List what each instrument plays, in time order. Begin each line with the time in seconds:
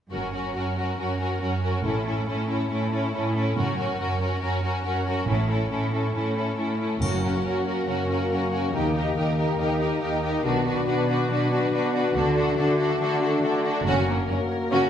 0.11 double bass section F#1, cello section F#2, viola section C#4, violin section F#4 A#4
0.33 viola section C#4, violin section F#4 A#4
0.54 cello section F#2, viola section C#4, violin section F#4 A#4
0.76 viola section C#4, violin section F#4 A#4
0.98 cello section F#2, viola section C#4, violin section F#4 A#4
1.20 viola section C#4, violin section F#4 A#4
1.41 cello section F#2, viola section C#4, violin section F#4 A#4
1.63 viola section C#4, violin section F#4 A#4
1.83 double bass section A1, cello section A2, viola section C#4, violin section E4 A4
2.05 viola section C#4, violin section E4 A4
2.27 cello section A2, viola section C#4, violin section E4 A4
2.49 viola section C#4, violin section E4 A4
2.71 cello section A2, viola section C#4, violin section E4 A4
2.92 viola section C#4, violin section E4 A4
3.14 cello section A2, viola section C#4, violin section E4 A4
3.35 viola section C#4, violin section E4 A4
3.56 double bass section F#1, cello section F#2, viola section C#4, violin section F#4 A#4
3.76 viola section C#4, violin section F#4 A#4
3.98 cello section F#2, viola section C#4, violin section F#4 A#4
4.19 viola section C#4, violin section F#4 A#4
4.40 cello section F#2, viola section C#4, violin section F#4 A#4
4.62 viola section C#4, violin section F#4 A#4
4.83 cello section F#2, viola section C#4, violin section F#4 A#4
5.05 viola section C#4, violin section F#4 A#4
5.27 double bass section A1, cello section A2, viola section C#4, violin section E4 A4
5.49 viola section C#4, violin section E4 A4
5.70 cello section A2, viola section C#4, violin section E4 A4
5.92 viola section C#4, violin section E4 A4
6.14 cello section A2, viola section C#4, violin section E4 A4
6.36 viola section C#4, violin section E4 A4
6.57 cello section A2, viola section C#4, violin section E4 A4
6.79 viola section C#4, violin section E4 A4
6.98 double bass section F#1, harp F#2, timpani F#2, cello section F#2, french horn section A#3 F#4, viola section C#4, violin section A#4, triangle
7.04 violin section F#4
7.21 harp C#4, viola section C#4, violin section F#4 A#4
7.42 cello section F#2, viola section C#4, violin section A#4, harp A#4
7.48 violin section F#4
7.65 viola section C#4, violin section F#4 A#4, harp C#5
7.86 cello section F#2, harp C#3, viola section C#4, violin section F#4 A#4
8.09 harp C#4, viola section C#4, violin section F#4 A#4
8.30 cello section F#2, viola section C#4, violin section F#4 A#4, harp A#4
8.51 viola section C#4, violin section F#4 A#4, harp C#5
8.72 cello section D#2, double bass section D#2, harp D#3, viola section D#4, french horn section G4, violin section G4 A#4
8.94 harp D#4, viola section D#4, violin section G4 A#4
9.16 cello section D#2, viola section D#4, violin section G4 A#4, harp A#4
9.37 viola section D#4, violin section G4 A#4, harp D#5
9.58 cello section D#2, harp A#3, viola section D#4, violin section G4 A#4
9.78 harp D#4, viola section D#4, violin section G4 A#4
10.01 cello section D#2, viola section D#4, violin section G4 A#4, harp A#4
10.23 viola section D#4, violin section G4 A#4, harp D#5
10.44 double bass section B1, cello section B2, harp B2, french horn section D4 F#4, viola section D4, violin section F#4 B4
10.65 harp D4, viola section D4, violin section F#4 B4
10.86 cello section B2, viola section D4, violin section F#4 B4, harp B4
11.08 viola section D4, violin section F#4 B4, harp D5
11.30 cello section B2, harp F#3, viola section D4, violin section F#4 B4
11.51 harp D4, viola section D4, violin section F#4 B4
11.72 cello section B2, viola section D4, violin section F#4 B4, harp B4
11.93 viola section D4, violin section F#4 B4, harp D5
12.15 double bass section D2, harp D3, cello section D3, french horn section A3, viola section D4, violin section F#4 A4
12.36 harp D4, viola section D4, violin section F#4 A4
12.57 cello section D3, viola section D4, violin section F#4 A4, harp A4
12.78 viola section D4, violin section F#4 A4, harp D5
13.00 cello section D3, harp A3, viola section D4, violin section F#4 A4
13.22 harp D4, viola section D4, violin section F#4 A4
13.43 cello section D3, viola section D4, violin section F#4 A4, harp A4
13.64 viola section D4, violin section F#4 A4, harp D5
13.85 double bass section F#1, cello section F#2, harp F#2, french horn section A#3 F#4, viola section C#4, violin section F#4 A#4
14.08 cello section F#2, violin section A#3, harp C#4, viola section C#4
14.29 cello section F#2, viola section C#4, violin section C#4, harp A#4
14.51 harp C#5
14.71 cello section F#2, harp C#3, viola section C#4, violin section F#4